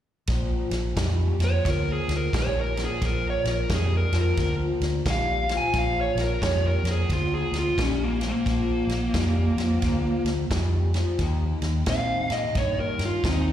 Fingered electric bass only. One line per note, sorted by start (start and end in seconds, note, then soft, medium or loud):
0.29 0.62 A#1 medium
0.71 0.90 A#1 medium
0.97 1.30 F2 medium
1.39 1.59 F2 medium
1.65 1.98 D2 medium
2.08 2.27 D2 medium
2.34 2.86 A#1 medium
3.02 3.35 A#1 medium
3.44 3.64 A#1 medium
3.70 4.03 F2 medium
4.12 4.32 F2 medium
4.37 4.71 D2 medium
4.80 5.00 D2 medium
5.06 5.58 A#1 medium
5.74 6.07 A#1 loud
6.15 6.35 A#1 medium
6.42 6.75 F2 medium
6.83 7.03 F2 medium
7.10 7.43 D2 loud
7.52 7.72 D2 medium
7.78 8.31 A#1 medium
8.46 8.79 A#1 medium
8.87 9.07 A#1 medium
9.15 9.48 F2 medium
9.56 9.76 F2 medium
9.82 10.15 D2 medium
10.24 10.44 D2 medium
10.51 11.03 F2 medium
11.19 11.52 D#2 medium
11.62 11.81 D#2 medium
11.87 12.20 A#2 medium
12.30 12.49 A#2 medium
12.55 12.88 G2 medium
12.99 13.18 G2 medium
13.24 13.53 D#2 medium